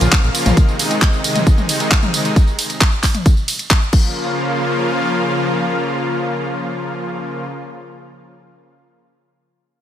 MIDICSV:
0, 0, Header, 1, 4, 480
1, 0, Start_track
1, 0, Key_signature, -5, "minor"
1, 0, Tempo, 447761
1, 612, Time_signature, 4, 2, 24, 8
1, 10520, End_track
2, 0, Start_track
2, 0, Title_t, "Supersaw synth"
2, 0, Program_c, 0, 81
2, 130, Note_on_c, 0, 53, 93
2, 130, Note_on_c, 0, 58, 92
2, 131, Note_on_c, 0, 49, 92
2, 131, Note_on_c, 0, 65, 92
2, 215, Note_off_c, 0, 53, 0
2, 215, Note_off_c, 0, 58, 0
2, 216, Note_off_c, 0, 49, 0
2, 216, Note_off_c, 0, 65, 0
2, 252, Note_on_c, 0, 53, 97
2, 253, Note_on_c, 0, 58, 93
2, 253, Note_on_c, 0, 65, 92
2, 254, Note_on_c, 0, 49, 97
2, 336, Note_off_c, 0, 53, 0
2, 337, Note_off_c, 0, 49, 0
2, 337, Note_off_c, 0, 58, 0
2, 337, Note_off_c, 0, 65, 0
2, 371, Note_on_c, 0, 53, 96
2, 372, Note_on_c, 0, 49, 93
2, 372, Note_on_c, 0, 58, 96
2, 372, Note_on_c, 0, 65, 96
2, 539, Note_off_c, 0, 53, 0
2, 540, Note_off_c, 0, 49, 0
2, 540, Note_off_c, 0, 58, 0
2, 540, Note_off_c, 0, 65, 0
2, 612, Note_on_c, 0, 63, 92
2, 613, Note_on_c, 0, 48, 92
2, 613, Note_on_c, 0, 51, 91
2, 613, Note_on_c, 0, 56, 92
2, 780, Note_off_c, 0, 63, 0
2, 781, Note_off_c, 0, 48, 0
2, 781, Note_off_c, 0, 51, 0
2, 781, Note_off_c, 0, 56, 0
2, 852, Note_on_c, 0, 48, 88
2, 852, Note_on_c, 0, 51, 90
2, 852, Note_on_c, 0, 56, 90
2, 852, Note_on_c, 0, 63, 87
2, 1020, Note_off_c, 0, 48, 0
2, 1020, Note_off_c, 0, 51, 0
2, 1020, Note_off_c, 0, 56, 0
2, 1020, Note_off_c, 0, 63, 0
2, 1092, Note_on_c, 0, 48, 92
2, 1092, Note_on_c, 0, 56, 93
2, 1093, Note_on_c, 0, 51, 94
2, 1093, Note_on_c, 0, 63, 94
2, 1260, Note_off_c, 0, 48, 0
2, 1260, Note_off_c, 0, 51, 0
2, 1260, Note_off_c, 0, 56, 0
2, 1260, Note_off_c, 0, 63, 0
2, 1330, Note_on_c, 0, 51, 93
2, 1330, Note_on_c, 0, 63, 92
2, 1331, Note_on_c, 0, 48, 91
2, 1331, Note_on_c, 0, 56, 93
2, 1499, Note_off_c, 0, 48, 0
2, 1499, Note_off_c, 0, 51, 0
2, 1499, Note_off_c, 0, 56, 0
2, 1499, Note_off_c, 0, 63, 0
2, 1571, Note_on_c, 0, 48, 95
2, 1571, Note_on_c, 0, 56, 90
2, 1572, Note_on_c, 0, 51, 90
2, 1572, Note_on_c, 0, 63, 91
2, 1740, Note_off_c, 0, 48, 0
2, 1740, Note_off_c, 0, 51, 0
2, 1740, Note_off_c, 0, 56, 0
2, 1740, Note_off_c, 0, 63, 0
2, 1812, Note_on_c, 0, 51, 92
2, 1813, Note_on_c, 0, 48, 93
2, 1813, Note_on_c, 0, 56, 91
2, 1813, Note_on_c, 0, 63, 94
2, 1980, Note_off_c, 0, 51, 0
2, 1980, Note_off_c, 0, 63, 0
2, 1981, Note_off_c, 0, 48, 0
2, 1981, Note_off_c, 0, 56, 0
2, 2050, Note_on_c, 0, 48, 92
2, 2051, Note_on_c, 0, 51, 90
2, 2051, Note_on_c, 0, 56, 92
2, 2051, Note_on_c, 0, 63, 93
2, 2135, Note_off_c, 0, 48, 0
2, 2135, Note_off_c, 0, 51, 0
2, 2135, Note_off_c, 0, 63, 0
2, 2136, Note_off_c, 0, 56, 0
2, 2168, Note_on_c, 0, 48, 94
2, 2168, Note_on_c, 0, 51, 94
2, 2168, Note_on_c, 0, 63, 92
2, 2169, Note_on_c, 0, 56, 94
2, 2253, Note_off_c, 0, 48, 0
2, 2254, Note_off_c, 0, 51, 0
2, 2254, Note_off_c, 0, 56, 0
2, 2254, Note_off_c, 0, 63, 0
2, 2288, Note_on_c, 0, 48, 94
2, 2288, Note_on_c, 0, 51, 96
2, 2288, Note_on_c, 0, 56, 92
2, 2289, Note_on_c, 0, 63, 94
2, 2457, Note_off_c, 0, 56, 0
2, 2458, Note_off_c, 0, 48, 0
2, 2458, Note_off_c, 0, 51, 0
2, 2458, Note_off_c, 0, 63, 0
2, 4212, Note_on_c, 0, 58, 75
2, 4212, Note_on_c, 0, 65, 93
2, 4213, Note_on_c, 0, 49, 82
2, 4213, Note_on_c, 0, 53, 76
2, 7984, Note_off_c, 0, 58, 0
2, 7984, Note_off_c, 0, 65, 0
2, 7985, Note_off_c, 0, 49, 0
2, 7985, Note_off_c, 0, 53, 0
2, 10520, End_track
3, 0, Start_track
3, 0, Title_t, "Analog synth bass"
3, 0, Program_c, 1, 38
3, 13, Note_on_c, 1, 34, 83
3, 84, Note_off_c, 1, 34, 0
3, 254, Note_on_c, 1, 34, 78
3, 325, Note_off_c, 1, 34, 0
3, 493, Note_on_c, 1, 34, 87
3, 565, Note_off_c, 1, 34, 0
3, 10520, End_track
4, 0, Start_track
4, 0, Title_t, "Drums"
4, 12, Note_on_c, 9, 42, 66
4, 12, Note_on_c, 9, 54, 35
4, 120, Note_off_c, 9, 42, 0
4, 120, Note_off_c, 9, 54, 0
4, 132, Note_on_c, 9, 36, 113
4, 132, Note_on_c, 9, 39, 116
4, 132, Note_on_c, 9, 42, 67
4, 132, Note_on_c, 9, 54, 45
4, 239, Note_off_c, 9, 36, 0
4, 239, Note_off_c, 9, 39, 0
4, 239, Note_off_c, 9, 42, 0
4, 239, Note_off_c, 9, 54, 0
4, 252, Note_on_c, 9, 54, 23
4, 359, Note_off_c, 9, 54, 0
4, 372, Note_on_c, 9, 46, 92
4, 372, Note_on_c, 9, 51, 81
4, 372, Note_on_c, 9, 54, 80
4, 479, Note_off_c, 9, 46, 0
4, 479, Note_off_c, 9, 51, 0
4, 479, Note_off_c, 9, 54, 0
4, 492, Note_on_c, 9, 42, 69
4, 492, Note_on_c, 9, 47, 82
4, 492, Note_on_c, 9, 54, 34
4, 600, Note_off_c, 9, 42, 0
4, 600, Note_off_c, 9, 47, 0
4, 600, Note_off_c, 9, 54, 0
4, 612, Note_on_c, 9, 36, 116
4, 612, Note_on_c, 9, 42, 71
4, 612, Note_on_c, 9, 54, 44
4, 719, Note_off_c, 9, 36, 0
4, 719, Note_off_c, 9, 42, 0
4, 719, Note_off_c, 9, 54, 0
4, 733, Note_on_c, 9, 54, 22
4, 840, Note_off_c, 9, 54, 0
4, 852, Note_on_c, 9, 46, 102
4, 852, Note_on_c, 9, 51, 83
4, 852, Note_on_c, 9, 54, 77
4, 959, Note_off_c, 9, 46, 0
4, 959, Note_off_c, 9, 51, 0
4, 959, Note_off_c, 9, 54, 0
4, 973, Note_on_c, 9, 42, 70
4, 973, Note_on_c, 9, 54, 33
4, 1080, Note_off_c, 9, 42, 0
4, 1080, Note_off_c, 9, 54, 0
4, 1091, Note_on_c, 9, 39, 115
4, 1091, Note_on_c, 9, 42, 67
4, 1091, Note_on_c, 9, 54, 43
4, 1092, Note_on_c, 9, 36, 119
4, 1198, Note_off_c, 9, 39, 0
4, 1198, Note_off_c, 9, 42, 0
4, 1198, Note_off_c, 9, 54, 0
4, 1199, Note_off_c, 9, 36, 0
4, 1212, Note_on_c, 9, 54, 23
4, 1319, Note_off_c, 9, 54, 0
4, 1333, Note_on_c, 9, 46, 91
4, 1333, Note_on_c, 9, 51, 84
4, 1333, Note_on_c, 9, 54, 80
4, 1440, Note_off_c, 9, 46, 0
4, 1440, Note_off_c, 9, 51, 0
4, 1440, Note_off_c, 9, 54, 0
4, 1452, Note_on_c, 9, 42, 70
4, 1452, Note_on_c, 9, 47, 60
4, 1452, Note_on_c, 9, 54, 33
4, 1560, Note_off_c, 9, 42, 0
4, 1560, Note_off_c, 9, 47, 0
4, 1560, Note_off_c, 9, 54, 0
4, 1572, Note_on_c, 9, 36, 119
4, 1572, Note_on_c, 9, 42, 68
4, 1572, Note_on_c, 9, 54, 45
4, 1679, Note_off_c, 9, 36, 0
4, 1679, Note_off_c, 9, 42, 0
4, 1679, Note_off_c, 9, 54, 0
4, 1692, Note_on_c, 9, 47, 58
4, 1692, Note_on_c, 9, 54, 21
4, 1799, Note_off_c, 9, 47, 0
4, 1799, Note_off_c, 9, 54, 0
4, 1812, Note_on_c, 9, 46, 105
4, 1812, Note_on_c, 9, 51, 86
4, 1812, Note_on_c, 9, 54, 76
4, 1919, Note_off_c, 9, 46, 0
4, 1919, Note_off_c, 9, 51, 0
4, 1919, Note_off_c, 9, 54, 0
4, 1932, Note_on_c, 9, 42, 71
4, 1932, Note_on_c, 9, 54, 34
4, 2039, Note_off_c, 9, 42, 0
4, 2039, Note_off_c, 9, 54, 0
4, 2052, Note_on_c, 9, 36, 116
4, 2052, Note_on_c, 9, 39, 117
4, 2052, Note_on_c, 9, 42, 68
4, 2052, Note_on_c, 9, 54, 45
4, 2159, Note_off_c, 9, 36, 0
4, 2159, Note_off_c, 9, 39, 0
4, 2159, Note_off_c, 9, 42, 0
4, 2159, Note_off_c, 9, 54, 0
4, 2172, Note_on_c, 9, 47, 79
4, 2172, Note_on_c, 9, 54, 22
4, 2280, Note_off_c, 9, 47, 0
4, 2280, Note_off_c, 9, 54, 0
4, 2293, Note_on_c, 9, 46, 88
4, 2293, Note_on_c, 9, 51, 85
4, 2293, Note_on_c, 9, 54, 79
4, 2400, Note_off_c, 9, 46, 0
4, 2400, Note_off_c, 9, 51, 0
4, 2400, Note_off_c, 9, 54, 0
4, 2413, Note_on_c, 9, 42, 69
4, 2413, Note_on_c, 9, 54, 33
4, 2520, Note_off_c, 9, 42, 0
4, 2520, Note_off_c, 9, 54, 0
4, 2532, Note_on_c, 9, 36, 121
4, 2533, Note_on_c, 9, 42, 72
4, 2533, Note_on_c, 9, 54, 42
4, 2639, Note_off_c, 9, 36, 0
4, 2640, Note_off_c, 9, 42, 0
4, 2640, Note_off_c, 9, 54, 0
4, 2653, Note_on_c, 9, 54, 22
4, 2760, Note_off_c, 9, 54, 0
4, 2773, Note_on_c, 9, 46, 104
4, 2773, Note_on_c, 9, 51, 83
4, 2773, Note_on_c, 9, 54, 73
4, 2880, Note_off_c, 9, 46, 0
4, 2880, Note_off_c, 9, 51, 0
4, 2880, Note_off_c, 9, 54, 0
4, 2893, Note_on_c, 9, 42, 72
4, 2893, Note_on_c, 9, 54, 32
4, 3000, Note_off_c, 9, 42, 0
4, 3000, Note_off_c, 9, 54, 0
4, 3012, Note_on_c, 9, 39, 118
4, 3012, Note_on_c, 9, 42, 69
4, 3012, Note_on_c, 9, 54, 41
4, 3013, Note_on_c, 9, 36, 121
4, 3120, Note_off_c, 9, 36, 0
4, 3120, Note_off_c, 9, 39, 0
4, 3120, Note_off_c, 9, 42, 0
4, 3120, Note_off_c, 9, 54, 0
4, 3132, Note_on_c, 9, 54, 21
4, 3240, Note_off_c, 9, 54, 0
4, 3252, Note_on_c, 9, 36, 59
4, 3252, Note_on_c, 9, 39, 64
4, 3252, Note_on_c, 9, 46, 94
4, 3252, Note_on_c, 9, 51, 83
4, 3252, Note_on_c, 9, 54, 75
4, 3359, Note_off_c, 9, 39, 0
4, 3359, Note_off_c, 9, 46, 0
4, 3359, Note_off_c, 9, 51, 0
4, 3359, Note_off_c, 9, 54, 0
4, 3360, Note_off_c, 9, 36, 0
4, 3372, Note_on_c, 9, 42, 71
4, 3372, Note_on_c, 9, 47, 61
4, 3372, Note_on_c, 9, 54, 32
4, 3479, Note_off_c, 9, 42, 0
4, 3479, Note_off_c, 9, 47, 0
4, 3479, Note_off_c, 9, 54, 0
4, 3492, Note_on_c, 9, 36, 120
4, 3492, Note_on_c, 9, 42, 70
4, 3492, Note_on_c, 9, 54, 43
4, 3599, Note_off_c, 9, 36, 0
4, 3599, Note_off_c, 9, 42, 0
4, 3599, Note_off_c, 9, 54, 0
4, 3612, Note_on_c, 9, 54, 21
4, 3719, Note_off_c, 9, 54, 0
4, 3731, Note_on_c, 9, 46, 104
4, 3731, Note_on_c, 9, 51, 82
4, 3731, Note_on_c, 9, 54, 73
4, 3838, Note_off_c, 9, 46, 0
4, 3838, Note_off_c, 9, 51, 0
4, 3838, Note_off_c, 9, 54, 0
4, 3852, Note_on_c, 9, 42, 71
4, 3852, Note_on_c, 9, 54, 32
4, 3959, Note_off_c, 9, 42, 0
4, 3959, Note_off_c, 9, 54, 0
4, 3972, Note_on_c, 9, 36, 118
4, 3972, Note_on_c, 9, 39, 123
4, 3972, Note_on_c, 9, 42, 71
4, 3972, Note_on_c, 9, 54, 42
4, 4079, Note_off_c, 9, 36, 0
4, 4079, Note_off_c, 9, 39, 0
4, 4079, Note_off_c, 9, 42, 0
4, 4079, Note_off_c, 9, 54, 0
4, 4091, Note_on_c, 9, 54, 21
4, 4199, Note_off_c, 9, 54, 0
4, 4211, Note_on_c, 9, 49, 89
4, 4212, Note_on_c, 9, 36, 115
4, 4318, Note_off_c, 9, 49, 0
4, 4319, Note_off_c, 9, 36, 0
4, 10520, End_track
0, 0, End_of_file